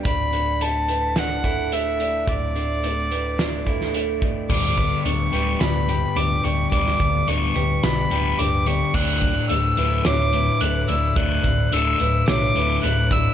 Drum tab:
CC |----------------|----------------|x---------------|----------------|
HH |x-x-x-x-x-x-x-x-|x-x-x-x-x-x-x-x-|--x-x-x-x-x-x-x-|x-x-x-x-x-x-x-x-|
SD |--------o-------|--------o--o----|--------o-------|-o------o-------|
BD |o---------o-----|o---------o---o-|o-o-------------|o-o-------------|

CC |x---------------|----------------|
HH |--x-x-x-x-x-x-x-|x-x-x-x-x-x-x-x-|
SD |--------o-------|--------o-------|
BD |o-o-------------|o-o-----------o-|